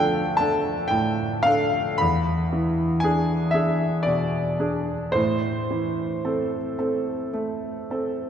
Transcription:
0.00 1.94 D2 medium
0.00 0.22 F3 medium
0.00 0.37 D4 medium
0.00 0.37 A4 medium
0.00 1.43 F5 medium
0.00 0.39 G5 loud
0.37 0.87 D4 soft
0.37 0.87 A4 medium
0.37 0.89 A5 medium
0.88 1.79 A2 medium
0.88 1.44 G5 medium
1.43 1.96 D4 medium
1.43 1.97 A4 medium
1.43 1.99 F5 loud
1.98 5.11 E2 medium
1.98 3.01 B5 medium
2.53 3.33 E3 medium
3.00 3.50 D4 medium
3.00 3.52 G#5 medium
3.04 3.50 G#4 medium
3.51 4.02 D4 soft
3.51 4.02 G#4 medium
3.51 4.04 E5 medium
4.03 4.93 B2 soft
4.03 5.13 D5 medium
4.60 5.11 D4 soft
4.60 5.11 G#4 soft
5.12 8.30 A2 medium
5.12 8.30 C5 medium
5.71 6.57 E3 soft
6.25 6.75 C4 soft
6.25 6.75 A4 medium
6.78 7.30 C4 soft
6.78 7.30 A4 soft
7.33 8.24 A3 soft
7.90 8.30 C4 soft
7.90 8.30 A4 medium

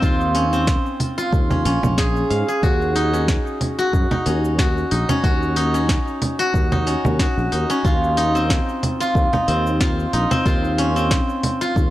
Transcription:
0.00 0.75 D#2 loud
0.00 0.41 C4 loud
0.00 2.40 D#4 medium
0.00 1.17 F4 loud
0.00 kick loud
0.00 cabasa medium
0.21 cabasa soft
0.35 0.59 C#4 loud
0.35 open hi-hat medium
0.53 1.57 C4 medium
0.53 cabasa medium
0.67 kick loud
0.67 snare loud
0.67 cabasa medium
0.86 cabasa soft
1.00 open hi-hat medium
1.00 low conga medium
1.18 2.69 F4 loud
1.18 cabasa medium
1.33 1.65 D#2 medium
1.33 kick loud
1.33 cabasa medium
1.51 1.65 C#4 medium
1.51 low conga medium
1.51 cabasa soft
1.65 1.77 A#1 loud
1.65 3.13 C#4 loud
1.65 open hi-hat medium
1.83 2.22 A#1 medium
1.83 low conga medium
1.83 cabasa medium
1.98 2.48 G#4 loud
1.98 kick loud
1.98 snare loud
1.98 cabasa medium
2.16 cabasa soft
2.30 2.42 G#2 loud
2.30 2.69 F5 medium
2.30 open hi-hat medium
2.48 4.76 G#4 medium
2.48 cabasa medium
2.63 3.36 D#2 loud
2.63 3.78 F#4 medium
2.63 kick loud
2.63 cabasa medium
2.81 cabasa soft
2.96 4.11 D#4 loud
2.96 open hi-hat medium
3.13 4.26 C#4 medium
3.13 cabasa medium
3.28 kick loud
3.28 snare medium
3.28 cabasa medium
3.47 cabasa soft
3.61 open hi-hat medium
3.61 low conga medium
3.79 4.58 F#4 loud
3.79 cabasa medium
3.93 4.05 F#2 medium
3.93 kick loud
3.93 cabasa medium
4.11 4.91 D#4 medium
4.11 low conga medium
4.11 cabasa soft
4.26 4.83 D#2 medium
4.26 5.09 C#4 medium
4.26 open hi-hat medium
4.45 cabasa medium
4.58 5.23 F#4 medium
4.58 kick loud
4.58 snare medium
4.58 cabasa medium
4.77 cabasa soft
4.91 5.03 A#1 medium
4.91 5.56 D#4 medium
4.91 open hi-hat medium
5.09 5.74 C#4 loud
5.09 low conga medium
5.09 cabasa medium
5.24 5.97 D#2 loud
5.24 6.39 F#4 loud
5.24 kick loud
5.24 cabasa medium
5.42 cabasa soft
5.56 6.71 D#4 loud
5.56 open hi-hat medium
5.74 6.86 C#4 medium
5.74 cabasa medium
5.89 kick loud
5.89 snare loud
5.89 cabasa medium
6.08 cabasa soft
6.22 open hi-hat medium
6.22 low conga medium
6.39 7.19 F#4 loud
6.39 cabasa medium
6.54 6.95 D#2 medium
6.54 kick loud
6.54 cabasa medium
6.72 7.52 D#4 medium
6.72 low conga medium
6.72 cabasa soft
6.87 7.69 C#4 medium
6.87 open hi-hat medium
7.05 7.25 D#2 medium
7.05 low conga medium
7.05 cabasa medium
7.19 7.91 F#4 medium
7.19 kick loud
7.19 snare loud
7.19 cabasa medium
7.37 7.47 A#1 medium
7.37 cabasa soft
7.52 7.64 D#2 medium
7.52 8.17 D#4 medium
7.52 open hi-hat medium
7.70 8.41 C#4 loud
7.70 cabasa medium
7.85 8.58 D#2 loud
7.85 9.00 F4 loud
7.85 kick loud
7.85 cabasa medium
8.04 cabasa soft
8.17 9.32 D#4 loud
8.17 open hi-hat loud
8.35 9.47 C4 medium
8.35 cabasa medium
8.50 kick loud
8.50 snare loud
8.50 cabasa medium
8.69 cabasa soft
8.83 open hi-hat loud
8.83 low conga medium
9.00 9.80 F4 loud
9.00 cabasa medium
9.15 9.27 D#2 medium
9.15 kick loud
9.15 cabasa medium
9.33 10.13 D#4 medium
9.33 low conga medium
9.33 cabasa soft
9.48 10.05 D#2 loud
9.48 10.31 C4 medium
9.48 open hi-hat medium
9.67 cabasa medium
9.80 10.45 F4 medium
9.80 kick loud
9.80 snare loud
9.80 cabasa medium
9.99 cabasa soft
10.13 10.25 A#1 loud
10.13 11.90 D#4 medium
10.13 open hi-hat medium
10.31 10.84 C4 loud
10.31 low conga medium
10.31 cabasa medium
10.46 11.19 D#2 loud
10.46 11.61 F4 loud
10.46 kick loud
10.46 cabasa medium
10.64 cabasa soft
10.78 11.02 C#4 loud
10.78 open hi-hat loud
10.96 11.90 C4 medium
10.96 cabasa medium
11.11 kick loud
11.11 snare loud
11.11 cabasa medium
11.29 cabasa soft
11.43 open hi-hat loud
11.43 low conga medium
11.61 11.90 F4 loud
11.61 cabasa medium
11.76 11.90 D#2 medium
11.76 kick loud
11.76 cabasa medium

